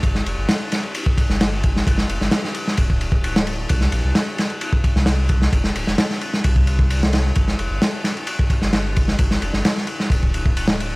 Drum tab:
RD |x-x-x-xxx-x-x-x-|x-x-x-x-x-x-x-x-|x-x-x-xxx-x-x-x-|x-x-x-x-x-x-x-x-|
SD |-o--o-o----oo--o|-o-ooo-o-----o--|-o--o-o----oo--o|-o-ooo-o-----oo-|
BD |o--------oo---o-|o-------oo-o----|o--------oo---o-|o-------oo-o----|

RD |x-x-x-xxx-x-x-x-|x-x-x-x-x-x-x-x-|
SD |-o--o-o----oo--o|-o-ooo-o-----o--|
BD |o--------oo---o-|o-------oo-o----|